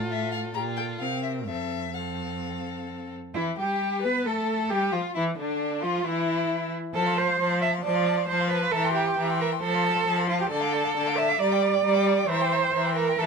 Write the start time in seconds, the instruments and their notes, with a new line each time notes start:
Already playing: cello A2, viola F4, violin A4
0.11 violin E5
0.31 violin F5
0.54 cello A#2, viola F4, violin G4 A#5
0.77 violin A4 G5
1.00 cello C3, viola C4, violin A#4 F5
1.23 violin E5
1.47 cello F2, viola C4, violin A4 E5
1.94 viola C4, violin A4 F5
3.35 viola E3, cello E4, violin E4
3.58 viola G3, violin G4, cello G4
4.03 viola B3, cello B4, violin B4
4.26 viola A3, cello A4, violin A4
4.70 viola G3, cello G4, violin G4
4.92 viola F3, violin F4, cello F4
5.15 viola E3, cello E4, violin E4
5.37 viola D3, violin D4, cello D4
5.81 viola F3, violin F4, cello F4
6.05 viola E3, cello E4, violin E4
6.94 viola F3, cello A4, violin C5 A5
7.05 violin F5 C6
7.16 violin C5 A5, cello C5
7.27 violin F5 C6
7.39 viola F3, violin C5 A5
7.50 violin F5 C6
7.61 violin C5 A5, cello E5
7.72 violin F5 C6
7.84 viola F3, violin C5 A5, cello D5
7.95 violin F5 C6
8.06 violin C5 A5
8.16 violin F5 C6
8.28 viola F3, violin C5 A5, cello C5
8.39 violin F5 C6
8.50 cello B4, violin C5 A5
8.61 violin F5 C6
8.72 viola E3, cello A4, violin E5 A#5
8.83 violin G5 C6
8.94 cello G4, violin E5 A#5
9.06 violin G5 C6
9.17 viola E3, violin E5 A#5
9.28 violin G5 C6
9.40 cello A#4, violin E5 A#5
9.51 violin G5 C6
9.62 viola F3, cello A4, violin C5 A5
9.74 violin F5 C6
9.84 violin C5 A5
9.94 violin F5 C6
10.05 viola F3, violin C5 A5
10.17 violin F5 C6
10.27 cello F4, violin C5 A5
10.38 cello G4, violin F5 C6
10.49 viola D3, cello A4, violin D5 A5
10.60 violin F5 D6
10.73 violin D5 A5
10.84 violin F5 D6
10.96 viola D3, violin D5 A5
11.06 violin F5 D6
11.17 violin D5 A5, cello E5
11.28 violin F5 D6
11.39 viola G3, cello D5, violin D5 A#5
11.51 violin G5 D6
11.62 violin D5 A#5
11.73 violin G5 D6
11.84 viola G3, violin D5 A#5
11.94 violin G5 D6
12.07 violin D5 A#5
12.18 violin G5 D6
12.28 viola E3, cello C5, violin E5 A#5
12.41 violin G5 C6
12.52 violin E5 A#5
12.63 violin G5 C6
12.73 viola E3, violin E5 A#5
12.85 violin G5 C6
12.96 cello A#4, violin E5 A#5
13.08 violin G5 C6
13.17 viola E3, cello A4, violin E5 A#5